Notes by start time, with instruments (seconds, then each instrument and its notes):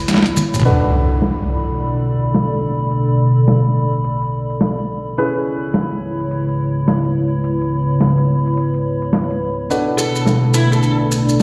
Already playing: ambient pad E4 C#5 B5
0.08 snare, closed hi-hat, maracas
0.11 snare
0.14 snare
0.17 snare
0.23 snare, closed hi-hat
0.37 high tom, maracas
0.54 closed hi-hat, mid tom, maracas
0.56 closed hi-hat, mid tom
0.60 mid tom
0.62 mid tom
0.63 analog synth pad B2 A3 D4 B4, grand piano D4 F#4 A4 B4, ambient pad A4, mid tom, impact
0.81 ambient pad D5
1.22 snare, closed hi-hat
1.39 closed hi-hat
1.67 closed hi-hat
1.78 closed hi-hat
1.95 closed hi-hat
2.24 closed hi-hat
2.34 snare, closed hi-hat
2.52 closed hi-hat
2.91 closed hi-hat
3.08 closed hi-hat
3.48 snare, closed hi-hat
3.65 closed hi-hat
3.93 closed hi-hat
4.04 closed hi-hat
4.22 closed hi-hat
4.50 closed hi-hat
4.61 snare, closed hi-hat
4.78 closed hi-hat
5.17 analog synth pad C#3 G#3 E4, grand piano C#4 E4 G#4 B4, ambient pad E4, closed hi-hat
5.27 ambient pad C#5
5.35 closed hi-hat
5.74 snare, closed hi-hat
5.91 closed hi-hat
6.20 closed hi-hat
6.31 closed hi-hat
6.48 closed hi-hat
6.88 snare, closed hi-hat
7.05 closed hi-hat
7.44 closed hi-hat
7.61 closed hi-hat
8.01 snare, closed hi-hat
8.18 closed hi-hat
8.46 closed hi-hat
8.54 closed hi-hat
8.57 closed hi-hat
8.63 closed hi-hat
8.66 closed hi-hat
8.74 closed hi-hat
9.02 closed hi-hat
9.13 snare, closed hi-hat
9.30 closed hi-hat
9.70 analog synth pad B2 A3 D4, grand piano D4 F#4 A4 B4, ambient pad A4, closed hi-hat, maracas
9.87 closed hi-hat
9.98 lead electric guitar A4, maracas
10.15 maracas
10.24 ambient pad D5, snare, closed hi-hat, maracas
10.44 closed hi-hat
10.54 lead electric guitar E4, maracas
10.72 lead electric guitar A4, closed hi-hat, maracas
10.83 closed hi-hat, maracas
11.00 closed hi-hat
11.11 maracas
11.29 closed hi-hat, maracas